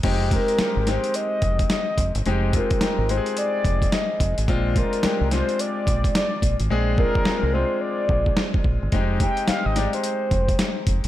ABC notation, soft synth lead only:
X:1
M:4/4
L:1/16
Q:"Swing 16ths" 1/4=108
K:Fdor
V:1 name="Soft synth lead"
z2 B4 c2 e4 e3 z | z2 B4 c2 d4 e3 z | z2 B4 c2 d4 d3 z | z2 B4 c2 d6 z2 |
z2 g2 f e d c6- c z2 |]